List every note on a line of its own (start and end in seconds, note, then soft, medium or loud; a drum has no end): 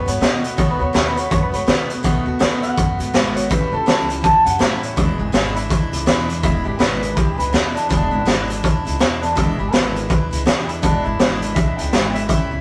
0.06 0.20 G#2 medium
0.06 0.20 A3 soft
0.06 0.20 B3 medium
0.06 0.21 F#4 medium
0.06 0.21 C#5 medium
0.06 closed hi-hat medium
0.20 0.43 B2 medium
0.20 0.55 B2 medium
0.20 0.43 D#3 medium
0.20 0.43 A3 medium
0.20 0.43 B3 medium
0.20 0.41 F#4 medium
0.20 0.43 D#5 medium
0.20 snare loud
0.20 closed hi-hat medium
0.43 0.57 A3 medium
0.43 0.57 B3 soft
0.43 0.57 F#4 medium
0.43 closed hi-hat medium
0.57 0.79 B1 medium
0.57 0.79 B2 medium
0.57 0.80 D#3 medium
0.57 0.80 A3 medium
0.57 0.79 B3 loud
0.57 0.78 F#4 medium
0.57 0.70 C#5 loud
0.57 kick loud
0.57 closed hi-hat medium
0.71 0.82 B4 medium
0.79 0.94 D#2 medium
0.79 0.93 A3 soft
0.79 0.93 B3 soft
0.79 0.93 F#4 medium
0.79 0.94 C#5 medium
0.93 1.28 D#2 medium
0.93 1.16 B2 medium
0.93 1.16 D#3 medium
0.93 1.16 A3 medium
0.93 1.16 B3 medium
0.93 1.15 F#4 medium
0.93 1.06 C#5 medium
0.93 snare loud
0.93 closed hi-hat medium
1.07 1.18 B4 medium
1.16 1.30 A3 soft
1.16 1.31 B3 soft
1.16 1.31 F#4 medium
1.16 1.30 C#5 medium
1.16 closed hi-hat medium
1.30 1.52 F#2 loud
1.30 1.53 D#3 medium
1.30 1.53 A3 medium
1.30 1.52 B3 medium
1.30 1.50 F#4 medium
1.30 1.42 C#5 loud
1.30 kick loud
1.30 closed hi-hat medium
1.43 1.54 B4 medium
1.52 1.67 G#2 medium
1.52 1.66 A3 soft
1.52 1.67 B3 soft
1.52 1.67 F#4 soft
1.52 1.68 C#5 medium
1.52 closed hi-hat medium
1.67 1.89 B2 medium
1.67 2.02 B2 loud
1.67 1.90 D#3 medium
1.67 1.90 A3 medium
1.67 1.89 B3 medium
1.67 1.88 F#4 medium
1.67 1.89 B4 loud
1.67 snare loud
1.67 closed hi-hat medium
1.89 2.03 A3 soft
1.89 2.03 B3 soft
1.89 2.03 F#4 medium
1.89 closed hi-hat medium
2.03 2.25 B1 loud
2.03 2.26 B2 loud
2.03 2.26 D#3 loud
2.03 2.26 A3 loud
2.03 2.25 B3 loud
2.03 2.24 F#4 loud
2.03 kick loud
2.03 closed hi-hat medium
2.25 2.40 D#2 medium
2.25 2.39 A3 medium
2.25 2.39 B3 medium
2.25 2.40 F#4 medium
2.39 2.75 D#2 medium
2.39 2.62 B2 medium
2.39 2.62 D#3 loud
2.39 2.63 A3 loud
2.39 2.62 B3 loud
2.39 2.61 F#4 loud
2.39 snare loud
2.39 closed hi-hat medium
2.62 2.76 A3 soft
2.62 2.77 B3 soft
2.62 2.77 F#4 medium
2.62 3.34 F#5 loud
2.62 closed hi-hat medium
2.76 2.98 F#2 loud
2.76 2.99 D#3 medium
2.76 3.00 A3 medium
2.76 2.99 B3 medium
2.76 2.97 F#4 medium
2.76 kick loud
2.76 closed hi-hat medium
2.99 3.13 G#2 medium
2.99 3.13 A3 soft
2.99 3.13 B3 soft
2.99 3.13 F#4 medium
2.99 closed hi-hat medium
3.13 3.48 G#1 loud
3.13 3.36 B2 medium
3.13 3.36 D#3 medium
3.13 3.36 A3 medium
3.13 3.35 B3 loud
3.13 3.33 F#4 loud
3.13 snare loud
3.13 closed hi-hat medium
3.35 3.50 A3 soft
3.35 3.50 B3 medium
3.35 3.50 F#4 medium
3.35 3.50 C#5 medium
3.35 closed hi-hat medium
3.49 3.71 A1 loud
3.49 3.72 A2 medium
3.49 3.72 E3 medium
3.49 3.73 G3 loud
3.49 3.72 C#4 loud
3.49 3.71 E4 medium
3.49 3.72 B4 medium
3.49 kick loud
3.49 closed hi-hat medium
3.72 3.86 C#2 medium
3.72 3.86 G3 soft
3.72 3.86 C#4 soft
3.72 3.86 E4 soft
3.72 4.08 A4 medium
3.86 4.21 C#2 medium
3.86 4.09 A2 medium
3.86 4.09 E3 medium
3.86 4.08 G3 medium
3.86 4.07 C#4 medium
3.86 4.06 E4 loud
3.86 snare loud
3.86 closed hi-hat medium
4.07 4.21 G3 medium
4.07 4.22 C#4 medium
4.07 4.23 E4 medium
4.07 closed hi-hat medium
4.21 4.45 E2 loud
4.21 4.45 E3 medium
4.21 4.45 G3 medium
4.21 4.45 C#4 medium
4.21 4.43 E4 medium
4.21 4.45 A5 loud
4.21 kick loud
4.21 closed hi-hat medium
4.45 4.60 F#2 medium
4.45 4.58 G3 soft
4.45 4.58 C#4 soft
4.45 4.59 E4 medium
4.45 4.60 F#5 medium
4.45 closed hi-hat medium
4.58 4.81 A2 medium
4.58 4.94 A2 loud
4.58 4.82 E3 medium
4.58 4.82 G3 loud
4.58 4.82 C#4 medium
4.58 4.80 E4 medium
4.58 4.83 E5 medium
4.58 snare loud
4.58 closed hi-hat medium
4.81 4.97 G3 soft
4.81 4.97 C#4 medium
4.81 4.96 E4 medium
4.81 4.97 C#5 medium
4.81 closed hi-hat medium
4.96 5.18 E1 loud
4.96 5.19 E2 medium
4.96 5.19 B2 medium
4.96 5.19 E3 medium
4.96 5.19 G#3 medium
4.96 5.18 D4 medium
4.96 5.17 E4 loud
4.96 5.20 B4 medium
4.96 kick loud
4.96 closed hi-hat medium
5.18 5.33 G#1 loud
5.18 5.32 E3 soft
5.18 5.32 G#3 soft
5.18 5.33 D4 soft
5.18 5.33 E4 soft
5.18 5.34 G#4 medium
5.32 5.68 G#1 medium
5.32 5.55 E2 medium
5.32 5.55 B2 loud
5.32 5.56 E3 medium
5.32 5.55 G#3 medium
5.32 5.54 D4 loud
5.32 5.53 E4 medium
5.32 5.55 F#4 medium
5.32 snare loud
5.32 closed hi-hat medium
5.54 5.68 E3 soft
5.54 5.68 G#3 medium
5.54 5.69 D4 medium
5.54 5.70 E4 medium
5.54 5.91 E4 medium
5.54 closed hi-hat medium
5.69 5.91 B1 medium
5.69 5.92 E3 medium
5.69 5.92 G#3 medium
5.69 5.91 D4 medium
5.69 5.91 E4 medium
5.69 kick loud
5.69 closed hi-hat medium
5.92 6.06 C#2 medium
5.92 6.06 E3 soft
5.92 6.06 G#3 soft
5.92 6.06 D4 soft
5.92 6.06 E4 soft
5.92 closed hi-hat medium
6.06 6.29 E2 medium
6.06 6.41 E2 loud
6.06 6.29 B2 medium
6.06 6.29 E3 loud
6.06 6.28 G#3 medium
6.06 6.27 D4 medium
6.06 6.26 E4 loud
6.06 snare loud
6.06 closed hi-hat medium
6.28 6.42 E3 soft
6.28 6.43 G#3 medium
6.28 6.43 D4 medium
6.28 6.43 E4 medium
6.28 closed hi-hat medium
6.43 6.64 E1 loud
6.43 6.65 E2 medium
6.43 6.65 B2 medium
6.43 6.65 E3 medium
6.43 6.64 G#3 medium
6.43 6.64 D4 loud
6.43 6.65 E4 medium
6.43 6.63 E4 medium
6.43 kick loud
6.43 closed hi-hat medium
6.64 6.79 G#1 medium
6.64 6.78 E3 soft
6.64 6.79 G#3 soft
6.64 6.79 D4 soft
6.64 6.79 E4 soft
6.64 6.79 G4 medium
6.79 7.14 G#1 medium
6.79 7.02 E2 medium
6.79 7.02 B2 medium
6.79 7.02 E3 medium
6.79 7.02 G#3 medium
6.79 7.01 D4 loud
6.79 7.00 E4 medium
6.79 7.15 B4 medium
6.79 snare loud
6.79 closed hi-hat medium
7.01 7.14 E3 soft
7.01 7.15 G#3 soft
7.01 7.16 D4 medium
7.01 7.16 E4 medium
7.01 closed hi-hat medium
7.15 7.38 B1 medium
7.15 7.38 E3 medium
7.15 7.38 G#3 medium
7.15 7.38 D4 medium
7.15 7.36 E4 medium
7.15 7.38 G4 medium
7.15 kick loud
7.15 closed hi-hat medium
7.38 7.53 C#2 medium
7.38 7.52 E3 soft
7.38 7.52 G#3 soft
7.38 7.53 D4 medium
7.38 7.53 E4 medium
7.38 7.52 B4 medium
7.38 closed hi-hat medium
7.53 7.75 E2 medium
7.53 7.87 E2 medium
7.53 7.75 B2 medium
7.53 7.75 E3 medium
7.53 7.74 G#3 medium
7.53 7.74 D4 medium
7.53 7.75 E4 medium
7.53 7.72 E4 medium
7.53 snare loud
7.53 closed hi-hat medium
7.74 7.89 E3 soft
7.74 7.89 G#3 soft
7.74 7.88 D4 medium
7.74 7.89 D4 medium
7.74 7.89 E4 medium
7.74 closed hi-hat medium
7.89 8.11 E1 medium
7.89 8.12 E2 medium
7.89 8.12 B2 medium
7.89 8.12 E3 medium
7.89 8.12 G#3 loud
7.89 8.96 D4 loud
7.89 8.11 D4 loud
7.89 8.10 E4 medium
7.89 kick loud
7.89 closed hi-hat medium
8.11 8.26 G#1 loud
8.11 8.25 E3 soft
8.11 8.25 G#3 soft
8.11 8.26 D4 soft
8.11 8.26 E4 medium
8.25 8.61 G#1 loud
8.25 8.48 E2 medium
8.25 8.48 B2 medium
8.25 8.49 E3 medium
8.25 8.48 G#3 medium
8.25 8.48 D4 medium
8.25 8.47 E4 medium
8.25 snare loud
8.25 closed hi-hat medium
8.48 8.62 E3 medium
8.48 8.62 G#3 medium
8.48 8.63 D4 medium
8.48 8.63 E4 medium
8.48 closed hi-hat medium
8.63 8.84 B1 medium
8.63 8.85 E3 medium
8.63 8.85 G#3 medium
8.63 8.84 D4 medium
8.63 8.84 E4 medium
8.63 kick loud
8.63 closed hi-hat medium
8.85 8.99 C#2 medium
8.85 8.99 E3 medium
8.85 9.00 G#3 medium
8.85 9.00 D4 medium
8.85 9.00 E4 medium
8.85 closed hi-hat medium
8.99 9.22 E2 medium
8.99 9.34 E2 medium
8.99 9.22 B2 medium
8.99 9.22 E3 medium
8.99 9.22 G#3 medium
8.99 9.21 D4 loud
8.99 9.21 E4 loud
8.99 snare loud
8.99 closed hi-hat medium
9.22 9.35 E3 soft
9.22 9.35 G#3 soft
9.22 9.36 D4 loud
9.22 9.36 D4 medium
9.22 9.36 E4 medium
9.22 closed hi-hat medium
9.35 9.58 E1 loud
9.35 9.58 E2 medium
9.35 9.58 B2 medium
9.35 9.58 E3 medium
9.35 9.59 G#3 loud
9.35 9.58 D4 medium
9.35 9.58 E4 medium
9.35 9.57 E4 loud
9.35 kick loud
9.35 closed hi-hat medium
9.58 9.73 G#1 medium
9.58 9.72 E3 soft
9.58 9.72 G#3 soft
9.58 9.72 D4 soft
9.58 9.73 E4 medium
9.58 9.73 G4 medium
9.72 10.07 G#1 medium
9.72 9.95 E2 medium
9.72 9.95 B2 medium
9.72 9.95 E3 medium
9.72 9.95 G#3 medium
9.72 9.94 D4 medium
9.72 9.94 E4 medium
9.72 10.44 B4 medium
9.72 snare loud
9.72 closed hi-hat medium
9.95 10.07 E3 soft
9.95 10.08 G#3 soft
9.95 10.09 D4 medium
9.95 10.09 E4 medium
9.95 closed hi-hat medium
10.09 10.31 B1 loud
10.09 10.31 E3 medium
10.09 10.32 G#3 medium
10.09 10.31 D4 medium
10.09 10.30 E4 medium
10.09 kick loud
10.09 closed hi-hat medium
10.31 10.45 C#2 medium
10.31 10.45 E3 soft
10.31 10.45 G#3 medium
10.31 10.45 D4 medium
10.31 10.46 E4 medium
10.31 closed hi-hat medium
10.45 10.68 E2 medium
10.45 10.81 E2 loud
10.45 10.68 B2 medium
10.45 10.68 E3 medium
10.45 10.68 G#3 medium
10.45 10.67 D4 medium
10.45 10.67 E4 medium
10.45 10.68 G4 medium
10.45 snare loud
10.45 closed hi-hat medium
10.68 10.81 E3 soft
10.68 10.82 G#3 medium
10.68 10.82 D4 medium
10.68 10.83 E4 medium
10.68 10.82 E4 medium
10.68 closed hi-hat medium
10.82 11.04 E1 loud
10.82 11.05 E2 medium
10.82 11.05 B2 medium
10.82 11.05 E3 medium
10.82 11.05 G#3 medium
10.82 11.04 D4 medium
10.82 11.04 D4 loud
10.82 11.03 E4 medium
10.82 kick loud
10.82 closed hi-hat medium
11.04 11.19 G#1 medium
11.04 11.19 E3 soft
11.04 11.19 G#3 soft
11.04 11.20 D4 soft
11.04 11.40 E4 medium
11.04 11.19 E4 medium
11.19 11.53 G#1 medium
11.19 11.42 E2 medium
11.19 11.42 B2 medium
11.19 11.42 E3 medium
11.19 11.42 G#3 medium
11.19 11.41 D4 medium
11.19 11.40 E4 medium
11.19 snare loud
11.19 closed hi-hat medium
11.41 11.54 E3 medium
11.41 11.55 G#3 medium
11.41 11.56 D4 medium
11.41 11.56 E4 medium
11.41 closed hi-hat medium
11.55 11.77 B1 loud
11.55 11.78 E3 medium
11.55 11.78 G#3 medium
11.55 11.78 D4 medium
11.55 11.77 E4 medium
11.55 11.77 E5 loud
11.55 kick loud
11.55 closed hi-hat medium
11.77 11.92 C#2 medium
11.77 11.92 G#3 soft
11.77 11.93 D4 medium
11.77 11.93 E4 medium
11.77 12.13 G5 medium
11.77 closed hi-hat medium
11.81 11.92 E3 soft
11.93 12.27 G#1 loud
11.93 12.15 E2 medium
11.93 12.15 B2 medium
11.93 12.15 E3 medium
11.93 12.15 G#3 medium
11.93 12.14 D4 medium
11.93 12.13 E4 medium
11.93 snare loud
11.93 closed hi-hat medium
12.14 12.27 E3 soft
12.14 12.28 G#3 soft
12.14 12.29 D4 medium
12.14 12.28 E4 medium
12.14 12.27 E5 loud
12.14 closed hi-hat medium
12.28 12.50 A1 medium
12.28 12.51 A2 medium
12.28 12.51 E3 medium
12.28 12.51 G3 loud
12.28 12.51 C#4 medium
12.28 12.50 E4 loud
12.28 12.61 E5 loud
12.28 kick loud
12.28 closed hi-hat medium
12.51 12.61 C#2 medium
12.51 12.61 G3 soft
12.51 12.61 C#4 soft
12.51 12.61 E4 soft